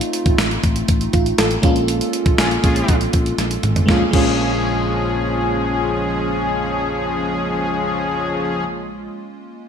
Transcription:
Already playing: A3 C4 D#4 F4
0.01 closed hi-hat
0.13 closed hi-hat
0.26 A1, kick, closed hi-hat
0.38 A1, snare, closed hi-hat
0.51 closed hi-hat
0.63 A1, kick, closed hi-hat
0.76 closed hi-hat
0.88 A1, kick, closed hi-hat
1.01 closed hi-hat
1.13 A1 F4, kick, closed hi-hat
1.26 closed hi-hat
1.38 A1 F4 A4, snare, closed hi-hat
1.51 closed hi-hat
1.62 A#1 G#3 A#3 C#4 F4, kick, closed hi-hat
1.76 closed hi-hat
1.88 closed hi-hat
2.01 closed hi-hat
2.13 closed hi-hat
2.26 A#1, kick, closed hi-hat
2.38 A#1 C#4 F4 G#4, snare, closed hi-hat
2.51 closed hi-hat
2.63 A#1 C#4 F4 G#4, kick, closed hi-hat
2.76 closed hi-hat
2.88 A#1, kick, closed hi-hat
3.01 closed hi-hat
3.13 A#1, kick, closed hi-hat
3.26 closed hi-hat
3.38 A#1, snare, closed hi-hat
3.51 closed hi-hat
3.63 G#1, closed hi-hat, mid tom
3.76 closed hi-hat, floor tom
3.86 A#1 F3 G#3 A#3 C#4 G#4, kick, snare
3.91 F4
4.11 A#1 F3 G#3 A#3 C#4 G#4, kick, crash
4.16 F4

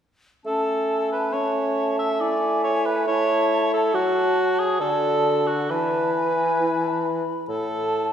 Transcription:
0.44 A3 C#4 A4 A5
1.12 B4
1.33 C#4 C#5 A5
1.99 E5
2.20 E4 D5 G#5
2.63 C#5
2.86 B4
3.07 E4 C#5 A5
3.74 A4
3.94 F#3 F#4 A5
4.59 G#4
4.80 D3 F#4 A4 A5
5.47 F#4
5.70 E3 E4 B4 A5
6.17 G#5
6.60 E4
6.83 A5
7.05 B5
7.48 A2 E4 A4 A5

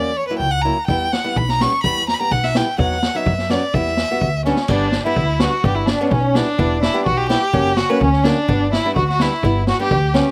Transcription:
Already playing: E2 F#3 A#3 C#4 D5
0.17 C#5
0.28 F#3 A#3 E4 B4
0.38 C#2 G5
0.51 F#5
0.62 F#3 A#3 E4 A#5
0.87 E2 G3 B3 E4 G5, kick, snare
1.12 F#5, snare
1.24 G3 B3 E4
1.36 B1 B5, kick
1.49 A#5, snare
1.61 G3 B3 C#4 C#6, snare
1.83 E2 G3 B3 E4 B5, kick
1.97 snare
2.08 A#5, snare
2.14 B5
2.19 G3 B3 G4 A#5
2.31 B1 F#5, kick, snare
2.43 E5, snare
2.55 G3 B3 E4 G5, snare
2.78 E2 F#3 B3 D#4 F#5, kick
2.91 snare
3.03 snare
3.15 F#3 B3 D#4 E5
3.26 F#2, kick
3.38 snare
3.50 F#3 B3 C#4 D5, snare
3.74 E2 G3 B3 E4 E5, kick
3.86 snare
3.97 snare
4.11 G3 B3 F#4
4.21 D2, kick
4.45 G3 B3 C#4 D4, snare
4.56 snare
4.68 G1 G3 B3 D4, kick, crash
4.92 snare
5.05 G3 B3 E4
5.16 D2, kick
5.39 G3 B3 D4 F#4, snare
5.64 G1 G3 B3 D4 G4, kick
5.75 E4
5.86 D4, snare
6.01 G3 B3 C#4
6.10 B1 C#4, kick
6.34 G3 B3 D4 E4, snare
6.58 E1 G3 B3 D4 E4, kick
6.82 E4, snare
6.94 G3 B3 G4
7.05 B1 F#4, kick
7.17 G4
7.28 G3 B3 E4 G4, snare
7.53 F#1 F#3 A#3 C#4, kick
7.65 snare
7.77 F#4, snare
7.89 F#3 A#3 C#4 B4
8.01 D2 C#4, kick
8.13 snare
8.24 F#3 A#3 C#4 D4, snare
8.48 G1 G3 B3 D4, kick
8.72 E4, snare
8.85 G3 B3 D4
8.96 D2 F#4, kick
9.09 F#4, snare
9.20 G3 B3 D4 E4, snare
9.43 G1 G3 B3 E4, kick
9.67 F#4, snare
9.79 G3 B3 D4 G4
9.91 D2, kick
10.14 G3 B3 C#4, snare

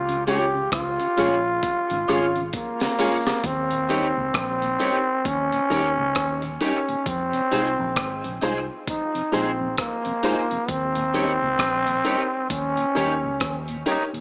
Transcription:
Already playing: C#2 F4
0.09 C#3, closed hi-hat
0.27 G#3 C#4 F4 G4 G#4 C#5, closed hi-hat, tambourine
0.55 C#3
0.72 C#2 F4, kick, cross-stick, closed hi-hat, high woodblock
1.00 C#3, closed hi-hat
1.17 A#1 G#3 C#4 F4 G#4 C#5, closed hi-hat, tambourine
1.63 kick, closed hi-hat
1.90 G#1 C#3, closed hi-hat
2.08 G#1 G#3 C#4 F4 G#4 C#5, closed hi-hat, tambourine, high woodblock
2.35 C#3, closed hi-hat
2.53 A#3, kick, closed hi-hat
2.80 C#3, snare, closed hi-hat
2.98 G#3 C#4 F4 G#4 C#5, open hi-hat, tambourine
3.26 C#3 G#4 C#5, snare, closed hi-hat, high woodblock
3.44 D#2 C4, kick, closed hi-hat
3.71 D#2 A#2, closed hi-hat
3.89 G3 C#4 D#4 G4 A#4 C#5, closed hi-hat, tambourine
4.17 C#2 D#2 A#2
4.34 A#1 C4, kick, cross-stick, closed hi-hat, high woodblock
4.62 D#2 A#2, closed hi-hat
4.79 G3 C#4 D#4 G4 A#4 C#5, closed hi-hat, tambourine
5.25 D#2 C#4, kick, closed hi-hat
5.52 D#2 A#2, closed hi-hat
5.70 D#2 G3 C#4 D#4 G4 A#4 C#5, closed hi-hat, tambourine
5.97 C#2 D#2 A#2
6.15 D#2, kick, cross-stick, closed hi-hat
6.42 D#2 A#2, closed hi-hat
6.61 G3 C#4 D#4 G4 A#4 C#5, closed hi-hat, tambourine
6.88 D#2 A#2, closed hi-hat
7.06 F2 C4, kick, closed hi-hat
7.33 F2 C3, closed hi-hat
7.51 C2 G#3 D#4 F4 G#4 C5, closed hi-hat, tambourine
7.78 A#1 F2 C3
7.96 G#1, kick, cross-stick, closed hi-hat, high woodblock
8.24 A#1 F2 C3, closed hi-hat
8.41 C2 G#3 D#4 F4 G#4 C5, closed hi-hat, tambourine
8.88 D#4, kick, closed hi-hat
9.15 F2 C3, closed hi-hat
9.32 A#1 G#3 C4 D#4 F4 G#4 C5, closed hi-hat, tambourine
9.60 F2 C3
9.77 A#3, kick, cross-stick, closed hi-hat
10.05 F2 C3, closed hi-hat
10.23 G#3 D#4 F4 G#4 C5, closed hi-hat, tambourine
10.51 F2 C3, closed hi-hat
10.68 D#2 C4, kick, closed hi-hat
10.95 D#2 A#2, closed hi-hat
11.14 G3 C#4 D#4 G4 A#4 C#5, closed hi-hat, tambourine
11.42 C#2 D#2 A#2
11.59 A#1, kick, cross-stick, closed hi-hat, high woodblock
11.87 D#2 A#2, closed hi-hat
12.04 G3 C#4 D#4 G4 A#4 C#5, closed hi-hat, tambourine
12.50 D#2 C#4, kick, closed hi-hat
12.77 D#2 A#2, closed hi-hat
12.95 D#2 G3 C#4 D#4 G4 A#4 C#5, closed hi-hat, tambourine
13.23 C#2 D#2 A#2
13.40 D#2, kick, cross-stick, closed hi-hat
13.68 D#2 A#2, closed hi-hat
13.86 G3 C#4 D#4 G4 A#4 C#5, closed hi-hat, tambourine
14.13 D#2 A#2, closed hi-hat

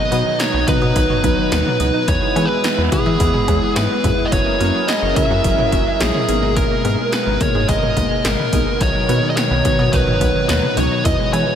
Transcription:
Already playing: B2 F#3 D#4 D#5
0.12 B2 F#3 B3 D#4 F#4 B4, closed hi-hat
0.26 D#3
0.40 D#3 C#5, snare, closed hi-hat
0.54 B1 B3
0.68 F#3 B3 D#4 F#4 B4, kick, closed hi-hat, mid tom
0.82 B2 D#5
0.96 B1 D#3, kick, closed hi-hat
1.10 F#3, mid tom
1.24 B1 F#3 B3 D#4 F#4 B4, kick, closed hi-hat
1.38 D#3
1.52 D#2 D#3 B4, snare, closed hi-hat
1.66 B3, mid tom
1.80 C#2 F#3 B3 D#4 F#4 B4 D#5, closed hi-hat
1.94 D#4
2.08 E2 E3 G#3 B3 E4 C#5, kick, closed hi-hat
2.22 G#3
2.36 E3 G#3 B3 E4 G#4 B4, closed hi-hat, cowbell
2.45 B4
2.50 E3
2.64 E3, snare, closed hi-hat
2.78 E2 B3
2.92 G#3 B3 E4 G#4 B4, kick, closed hi-hat, mid tom
3.06 E3 E5
3.20 E2 E3, kick, closed hi-hat
3.34 G#3, mid tom
3.48 E2 G#3 B3 E4 G#4 C#5, kick, closed hi-hat, cowbell
3.62 E3
3.76 G#2 E3 B4, snare, closed hi-hat
3.90 B3
4.04 F#2 G#3 B3 E4 G#4 B4 E5, kick, closed hi-hat, mid tom
4.18 E4
4.25 D#5
4.32 F#1 F#3 C#4 E4 G#4 A#4 C#5, kick, closed hi-hat
4.46 A#3
4.60 F#2 A#3 C#4 E4 F#4 A#4, closed hi-hat
4.74 F#3
4.88 F#3 D#5, snare, closed hi-hat
5.02 F#1 C#4
5.16 A#3 C#4 E4 F#4 A#4 E5, kick, closed hi-hat, mid tom
5.30 F#2 F#4
5.44 F#1 F#3, kick, closed hi-hat
5.58 A#3, mid tom
5.72 F#1 A#3 C#4 E4 F#4 A#4, kick, closed hi-hat
5.87 F#3
6.00 A#1 F#3 G#4, snare, closed hi-hat
6.14 C#4, mid tom
6.28 G#1 B2 G#3 A#3 B3 D#4 G#4 A#4, closed hi-hat
6.42 D#4
6.57 G#3 A#4, kick, closed hi-hat
6.71 A#3
6.84 G#2 A#3 B3 D#4 G#4 A#4, closed hi-hat
6.99 G#3
7.12 G#3 B4, snare, closed hi-hat
7.27 G#1 B3
7.41 A#3 B3 D#4 G#4 A#4 C#5, kick, closed hi-hat, mid tom
7.55 G#2 G#4
7.69 G#1 G#3 D#5, kick, closed hi-hat
7.83 A#3, mid tom
7.97 G#1 A#3 B3 D#4 G#4 A#4, kick, closed hi-hat
8.11 G#3
8.25 G#1 G#3 A#4, snare, closed hi-hat
8.38 B3, mid tom
8.53 B1 A#3 B3 D#4 G#4 A#4, kick, closed hi-hat
8.67 D#4
8.81 B1 D#3 F#3 C#5, kick, closed hi-hat
8.95 F#3
9.09 B2 F#3 B3 D#4 F#4 B4, closed hi-hat
9.23 D#3
9.30 D#5
9.37 D#3 C#5, snare, closed hi-hat
9.51 B1 B3
9.65 F#3 B3 D#4 F#4 B4, kick, closed hi-hat, mid tom
9.79 B2 D#5
9.93 B1 D#3 B4, kick, closed hi-hat
10.07 F#3, mid tom
10.21 B1 F#3 B3 D#4 F#4 B4, kick, closed hi-hat
10.35 D#3
10.49 D#2 D#3 B4, snare, closed hi-hat
10.63 B3, mid tom
10.77 C#2 F#3 B3 D#4 F#4 B4 C#5 D#5, closed hi-hat
10.91 D#4
11.05 E2 E3 G#3 D#5, kick, closed hi-hat
11.19 G#3
11.33 E3 G#3 B3 E4 G#4 B4 C#5, closed hi-hat, cowbell
11.47 E3

